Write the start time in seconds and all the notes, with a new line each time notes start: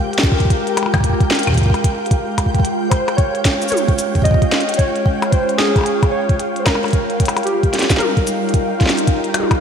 Already playing: G#3 F4 G4 A#4 F5 G5
0.13 closed hi-hat
0.18 snare
0.23 kick, closed hi-hat
0.32 kick
0.40 kick, closed hi-hat
0.45 kick
0.50 kick, closed hi-hat
0.67 closed hi-hat
0.77 closed hi-hat, percussion blips
0.83 percussion blips
0.86 percussion blips
0.94 kick, closed hi-hat, percussion blips
1.00 kick, closed hi-hat
1.04 kick
1.09 kick
1.13 kick
1.20 kick, closed hi-hat
1.31 snare, closed hi-hat
1.35 closed hi-hat
1.39 closed hi-hat
1.43 closed hi-hat
1.47 kick, closed hi-hat, percussion blips
1.50 kick
1.52 kick, closed hi-hat
1.55 kick
1.57 kick, closed hi-hat
1.62 kick, closed hi-hat
1.66 kick
1.70 kick
1.74 closed hi-hat, percussion blips
1.84 kick, closed hi-hat
2.06 closed hi-hat
2.11 kick, closed hi-hat
2.38 kick, closed hi-hat, percussion blips
2.46 kick
2.54 kick, closed hi-hat
2.60 kick
2.65 closed hi-hat
2.90 C5, kick, closed hi-hat, percussion blips
2.98 C#4
3.08 closed hi-hat, percussion blips
3.17 C#5, kick, closed hi-hat
3.35 closed hi-hat
3.45 kick, snare, closed hi-hat
3.62 closed hi-hat, cabasa
3.68 C#5, closed hi-hat, high tom, cabasa
3.75 C#5, cabasa
3.88 kick, closed hi-hat
3.99 closed hi-hat, cabasa
4.15 kick, closed hi-hat
4.22 D#5, kick
4.25 kick, closed hi-hat
4.31 kick
4.34 kick
4.42 kick, closed hi-hat
4.52 snare, closed hi-hat
4.60 closed hi-hat
4.69 closed hi-hat
4.74 C#5, closed hi-hat
4.79 kick, closed hi-hat
4.96 closed hi-hat
5.06 kick
5.22 closed hi-hat, percussion blips
5.31 C5, kick, closed hi-hat
5.49 closed hi-hat
5.58 G#4, snare
5.76 kick, closed hi-hat, percussion blips
5.78 percussion blips
5.81 percussion blips
5.83 closed hi-hat, percussion blips
6.03 kick, closed hi-hat, percussion blips
6.11 C#5
6.29 kick, closed hi-hat
6.40 closed hi-hat
6.56 C5, closed hi-hat
6.64 A#4, kick, snare, closed hi-hat, percussion blips
6.75 percussion blips
6.83 closed hi-hat, percussion blips
6.86 closed hi-hat
6.88 closed hi-hat
6.91 kick, closed hi-hat
6.93 G3, closed hi-hat
7.10 D#4, closed hi-hat
7.20 kick, closed hi-hat
7.25 closed hi-hat, percussion blips
7.29 closed hi-hat
7.37 closed hi-hat, percussion blips
7.43 G4, closed hi-hat
7.47 closed hi-hat
7.63 kick, closed hi-hat
7.74 snare, closed hi-hat
7.79 snare, closed hi-hat
7.82 snare, closed hi-hat
7.90 kick, snare, closed hi-hat, cabasa
7.97 A#4, snare, closed hi-hat, high tom
8.17 kick, closed hi-hat
8.27 closed hi-hat, cabasa
8.49 closed hi-hat
8.54 kick, closed hi-hat
8.79 F4, kick, snare, closed hi-hat
8.86 snare
8.90 snare, closed hi-hat
8.97 closed hi-hat
9.07 kick, closed hi-hat
9.24 closed hi-hat
9.34 closed hi-hat, high tom, percussion blips
9.40 high tom
9.43 high tom
9.51 kick, closed hi-hat, percussion blips